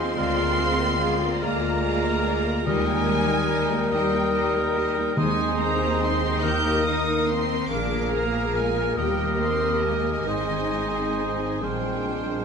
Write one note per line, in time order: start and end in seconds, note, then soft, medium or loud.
0.00 0.20 D#3 medium
0.00 0.14 G#3 medium
0.00 0.57 G#3 soft
0.00 2.62 G#3 medium
0.00 0.16 C4 soft
0.00 1.43 C4 medium
0.00 0.16 D#4 soft
0.00 0.21 D#4 soft
0.00 0.14 F4 medium
0.00 0.77 F4 soft
0.00 2.66 F4 medium
0.00 0.17 G#4 soft
0.00 1.19 G#4 medium
0.00 0.19 C5 medium
0.00 0.20 C5 soft
0.00 0.16 D#5 soft
0.00 1.41 F5 soft
0.00 1.42 C6 loud
0.00 0.13 F6 medium
0.15 1.27 D2 medium
0.15 2.68 D3 medium
0.15 0.36 G#3 medium
0.15 1.14 G#3 medium
0.15 1.14 F4 medium
0.15 0.36 G#4 medium
0.15 1.16 A#4 medium
0.15 0.36 D5 medium
0.15 0.36 F5 medium
0.15 1.13 F6 medium
0.37 0.59 A#3 soft
0.37 2.69 D4 soft
0.37 0.59 F4 soft
0.37 0.59 A#4 soft
0.37 0.58 D5 soft
0.58 0.79 G#3 soft
0.58 2.69 G#3 soft
0.58 0.80 G#4 soft
0.58 0.79 D5 soft
0.58 0.80 F5 soft
0.78 1.00 A#3 medium
0.78 1.00 F4 soft
0.78 1.01 A#4 medium
0.78 0.99 D5 soft
0.99 1.20 G#3 medium
0.99 1.20 G#4 medium
0.99 2.23 A#4 medium
0.99 1.20 D5 medium
0.99 1.19 F5 medium
1.20 1.42 A#3 soft
1.20 1.43 F4 medium
1.20 2.02 G#4 soft
1.20 1.42 A#4 medium
1.20 1.41 D5 medium
1.40 2.51 D2 medium
1.40 2.62 G#3 medium
1.40 1.63 G#3 medium
1.40 2.66 A#3 medium
1.40 2.63 F4 medium
1.40 1.63 G#4 soft
1.40 2.62 A#4 medium
1.40 1.60 D5 medium
1.40 1.81 F5 medium
1.40 1.63 F5 medium
1.40 2.67 A#5 medium
1.40 2.61 F6 medium
1.61 1.83 A#3 medium
1.61 1.83 F4 medium
1.61 1.82 A#4 medium
1.61 1.81 D5 medium
1.61 3.90 A#5 medium
1.81 2.02 G#3 soft
1.81 2.01 G#4 medium
1.81 2.02 D5 medium
1.81 2.69 F5 medium
1.81 2.02 F5 medium
2.01 2.23 A#3 soft
2.01 2.23 F4 medium
2.01 2.69 G#4 medium
2.01 2.25 A#4 soft
2.01 2.22 D5 medium
2.23 2.44 G#3 medium
2.23 2.44 G#4 medium
2.23 3.28 A#4 medium
2.23 2.43 D5 medium
2.23 2.45 F5 medium
2.43 2.65 A#3 medium
2.43 2.65 F4 medium
2.43 2.69 F4 soft
2.43 2.66 A#4 medium
2.43 2.66 D5 medium
2.64 3.77 D#2 medium
2.64 5.17 D#3 medium
2.64 3.88 D#3 medium
2.64 2.84 G3 medium
2.64 5.14 G3 medium
2.64 3.90 G3 medium
2.64 3.90 G#3 medium
2.64 2.85 G4 medium
2.64 5.17 A#4 medium
2.64 3.90 A#4 medium
2.64 2.85 D#5 medium
2.64 3.93 G#5 loud
2.64 3.89 D#6 medium
2.69 3.91 D#4 medium
2.85 5.21 G3 medium
2.85 3.07 A#3 medium
2.85 3.07 D#4 medium
2.85 3.07 A#4 medium
2.85 3.07 G5 medium
3.07 3.28 G3 medium
3.07 5.59 D#4 medium
3.07 3.28 G4 medium
3.07 3.29 G4 medium
3.07 3.29 D#5 medium
3.27 3.49 A#3 medium
3.27 3.49 D#4 medium
3.27 3.49 A#4 medium
3.27 4.96 A#4 soft
3.27 3.49 G5 medium
3.48 3.69 G3 medium
3.48 3.69 G4 medium
3.48 4.75 G4 medium
3.48 3.69 D#5 medium
3.70 3.92 A#3 medium
3.70 3.92 D#4 medium
3.70 3.92 A#4 medium
3.70 4.54 D#5 medium
3.70 3.92 G5 medium
3.89 5.03 D#2 medium
3.89 5.20 G3 medium
3.89 4.13 G4 medium
3.89 5.19 A#4 medium
3.89 4.13 D#5 medium
3.89 4.75 G5 medium
3.89 4.33 A#5 medium
3.89 5.14 D#6 medium
3.94 4.14 G3 medium
3.94 4.77 G3 medium
3.94 5.17 D#4 medium
3.94 4.14 G4 medium
4.12 4.35 A#3 medium
4.12 4.35 D#4 medium
4.12 4.34 A#4 medium
4.12 4.34 G5 medium
4.12 5.21 G5 medium
4.33 4.53 G3 medium
4.33 4.54 G4 medium
4.33 4.53 D#5 medium
4.33 5.21 A#5 medium
4.54 4.77 A#3 medium
4.54 4.77 D#4 medium
4.54 4.76 A#4 medium
4.54 6.20 D#5 medium
4.54 4.76 G5 medium
4.74 4.98 G3 medium
4.74 4.96 G4 medium
4.74 5.21 G4 medium
4.74 4.98 G4 medium
4.74 4.96 D#5 medium
4.94 5.18 A#3 medium
4.94 5.16 D#4 medium
4.94 5.16 A#4 medium
4.94 5.16 G5 medium
5.15 7.68 D#2 medium
5.15 6.38 D#3 medium
5.15 6.41 D#3 medium
5.15 6.45 G#3 medium
5.15 6.26 G#3 medium
5.15 6.38 C4 medium
5.15 7.67 D#4 medium
5.15 6.37 G#4 medium
5.15 6.44 C5 medium
5.15 6.26 C5 medium
5.15 7.66 D#5 medium
5.15 6.39 D#6 medium
5.19 5.57 G#3 medium
5.19 6.41 D#4 medium
5.19 5.57 G#5 medium
5.60 6.01 A#3 medium
5.60 6.83 D#4 medium
5.60 6.02 A#5 medium
5.80 6.46 C5 soft
6.00 6.43 C4 medium
6.00 6.46 G#4 medium
6.00 6.43 C6 medium
6.21 7.48 D#5 medium
6.41 7.75 D#3 medium
6.41 10.23 A#3 medium
6.41 7.45 A#3 medium
6.41 10.28 A#3 medium
6.41 7.42 D#4 medium
6.41 6.86 G4 medium
6.41 10.23 A#4 medium
6.41 7.44 A#4 medium
6.41 7.69 A#4 medium
6.41 7.42 D#6 medium
6.41 6.86 G6 medium
6.63 8.13 A#3 medium
6.84 7.27 D#4 medium
6.84 7.28 D#4 medium
6.84 7.28 D#6 medium
7.06 8.76 A#4 soft
7.28 7.71 C4 medium
7.28 7.75 D#4 medium
7.28 7.72 C6 medium
7.50 7.75 D#5 medium
7.70 8.95 A#1 medium
7.70 9.02 A#2 medium
7.70 8.94 A#3 medium
7.70 8.14 D4 medium
7.70 8.94 G#4 medium
7.70 8.96 G#4 medium
7.70 8.94 A#4 medium
7.70 8.94 F5 medium
7.70 8.13 D6 medium
7.70 8.98 F6 medium
7.93 9.02 F3 medium
8.13 8.56 A#3 medium
8.13 9.19 A#3 medium
8.13 8.55 A#5 medium
8.36 9.02 F4 soft
8.56 8.99 G#3 medium
8.56 9.02 G#4 medium
8.56 8.98 G#5 medium
8.77 9.83 A#4 soft
8.96 10.24 D#2 medium
8.96 10.31 D#3 medium
8.96 9.41 G3 medium
8.96 10.29 A#3 medium
8.96 10.26 G4 medium
8.96 10.24 G4 medium
8.96 10.23 G4 medium
8.96 10.24 A#4 medium
8.96 11.58 D#5 medium
8.96 9.40 G5 medium
8.96 10.26 D#6 medium
9.20 10.31 A#3 soft
9.40 9.84 C4 medium
9.40 10.93 D#4 soft
9.40 9.84 C6 medium
9.63 10.31 G4 soft
9.84 11.62 G#3 medium
9.84 10.31 A#4 soft
9.84 11.62 G#5 medium
10.05 11.66 D#5 soft
10.26 11.59 G#1 medium
10.26 11.65 G#2 medium
10.26 11.60 G#3 medium
10.26 11.58 C4 medium
10.26 12.45 C4 medium
10.26 11.57 D#4 medium
10.26 11.63 D#4 medium
10.26 11.59 D#4 medium
10.26 12.45 G#4 medium
10.26 11.60 C5 medium
10.26 11.65 D#6 medium
10.49 11.66 D#3 soft
10.71 12.07 G#3 soft
10.94 11.66 D#4 soft
11.15 12.45 C5 soft
11.38 12.45 G#4 soft
11.61 12.45 A#1 soft
11.61 12.45 A#2 soft
11.61 12.45 G3 medium
11.61 12.45 G#3 soft
11.61 12.45 A#3 soft
11.61 12.45 D4 soft
11.61 12.45 C5 soft
11.61 12.45 G5 medium
11.61 12.45 F6 soft
11.84 12.45 F3 soft
12.08 12.45 G#3 soft
12.32 12.45 D4 soft